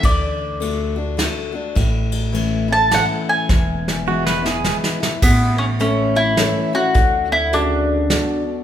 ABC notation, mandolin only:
X:1
M:3/4
L:1/8
Q:"Swing" 1/4=104
K:A
V:1 name="Mandolin"
d4 z2 | z3 a f g- | g4- g z | B, C C E2 F- |
F E D3 z |]